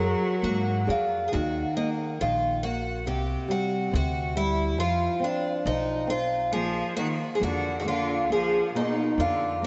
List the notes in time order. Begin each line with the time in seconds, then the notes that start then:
Already playing: F#2 F#3 A#4
0.00 F#4 G#4 A#4
0.42 G#2 A#3 F#4
0.87 F2 F4 G#4 A#4 D5
1.28 D#3 G#4
1.33 D#2 F#4
1.76 A#3 D#4
2.21 A#1 D#3 F4
2.63 A#3 F#4
3.06 C2 C3 G4
3.48 G3 F#4
3.91 D2 C3
3.95 F#4
4.35 G3 E4
4.78 F2 F3 F4
5.20 C4
5.24 D4
5.66 B1 F3 D#4
6.07 C4 F4
6.52 A#1 F3 A#3 G#4
6.97 D#3 A#3 F#4
7.35 F3 G#4
7.40 F2 D3 A#3 F#4
7.79 D#3 F#4
7.85 D3 A#3 F4
8.29 A#1 F3 A#3 G#4
8.74 B2 A#3 D#4
9.18 F2 D3 A#3 F4
9.62 D#3 A#3